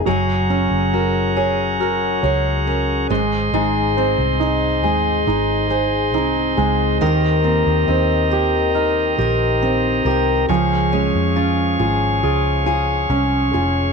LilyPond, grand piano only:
\new Staff \with { instrumentName = "Grand piano" } { \time 4/4 \key ges \lydian \tempo 4 = 69 ges8 des'8 bes'8 des''8 bes'8 des''8 bes'8 aes8 | ees'8 c''8 ees'8 aes8 ees'8 c''8 ees'8 aes8 | ees8 bes8 c'8 g'8 bes'8 g'8 c'8 g'8 | f8 aes8 des'8 f'8 aes'8 f'8 des'8 f'8 | }